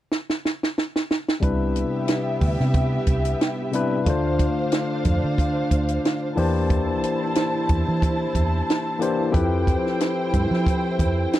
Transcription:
0.12 snare
0.30 snare
0.45 snare
0.63 snare
0.78 snare
0.96 snare
1.11 snare
1.28 snare
1.40 C2 C3 G3 B3 D4 E4 G4 B4 E5, kick, closed hi-hat
1.76 closed hi-hat
2.08 snare, closed hi-hat
2.41 D2, kick, open hi-hat
2.60 C3, snare
2.74 kick, closed hi-hat
3.07 C2, kick, closed hi-hat
3.25 closed hi-hat
3.41 snare, closed hi-hat
3.72 C3 G3 D4 E4 B4, closed hi-hat
4.05 D2 D3 A3 D4 F4 C5 F5, kick, closed hi-hat
4.09 C5
4.39 kick, closed hi-hat
4.72 snare, closed hi-hat
5.05 F2, kick, closed hi-hat
5.24 D3
5.38 kick, closed hi-hat
5.71 D2, kick, closed hi-hat
5.88 closed hi-hat
6.05 snare, closed hi-hat
6.36 E2 E3 A#3 D4 E4 G4 C5 A5, open hi-hat
6.70 kick, closed hi-hat
7.04 closed hi-hat
7.35 snare, closed hi-hat
7.69 E2, kick, closed hi-hat
7.88 E3
8.02 kick, closed hi-hat
8.35 E2, kick, closed hi-hat
8.70 snare, closed hi-hat
8.99 E3 A#3 D4 G4 C5, closed hi-hat
9.31 F2 F3 C4 E4 G4 A4 B4 C5 G5, kick, closed hi-hat
9.67 kick, closed hi-hat
9.87 snare
10.00 snare, closed hi-hat
10.33 G2, kick, closed hi-hat
10.51 F3, snare
10.66 kick, closed hi-hat
10.99 F2, kick, closed hi-hat
11.33 snare, closed hi-hat

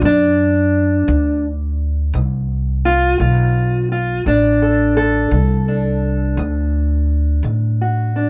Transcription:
0.02 D2 F#2 D4
1.08 D2 D3
2.13 C2 D2
2.85 F4
3.19 B1 D3 F4
3.92 F4
4.26 A1 D2 D4
4.62 A4
4.97 A4
5.31 C2 D3
5.68 D4
6.37 D2
7.43 A2 D3
7.81 F#4
8.16 D4

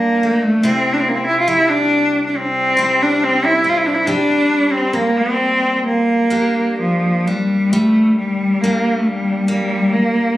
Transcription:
Already playing: G2 A#3 D4
0.23 A3
0.43 A3
0.63 C3 C4 E4
0.93 D4
1.00 C4
1.09 A#3
1.15 C4
1.26 E4
1.40 F4
1.47 G3 E4
1.69 D4
2.27 D4
2.36 C4
2.77 G3 C4 E4
3.02 D4
3.24 C4
3.45 E4
3.64 C4
3.69 F4
3.77 E4
3.86 D4
3.94 E4
4.06 G3 D4 G4
4.72 C4
4.93 A#3
5.17 C4
5.87 A#3
6.30 A#3 D4 G4
6.80 F3
7.27 G3 D4
7.71 G3 A3
8.18 G3
8.61 A#3 D4 G4
8.99 A3
9.06 G3
9.48 G3 A#3
9.93 A#3

